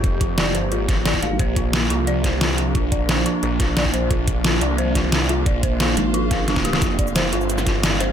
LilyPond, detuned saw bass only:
\new Staff \with { instrumentName = "Detuned saw bass" } { \clef bass \time 4/4 \key bes \mixolydian \tempo 4 = 177 f,,4. g,,8 aes,,4. r8 | bes,,4. c,2~ c,8 | bes,,4. r8 bes,,2 | bes,,4. c,2~ c,8 |
bes,,4. r2 r8 | f,,4. g,,2~ g,,8 | }